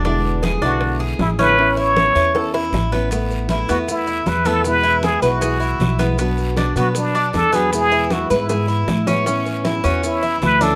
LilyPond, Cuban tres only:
\new Staff \with { instrumentName = "Cuban tres" } { \time 4/4 \key a \major \tempo 4 = 156 d'4 gis'8 d'4 gis'4 cis'8~ | cis'8 e'4 cis''8 a'8 e'4 b8 | b4 e'8 b4 e'4 b8~ | b8 e'4 b'8 gis'8 e'4 b8 |
b4 d'8 b4 d'4 b8~ | b8 e'4 b'8 gis'8 e'4 cis'8 | cis'4 e'8 cis'4 e'4 d'8 | }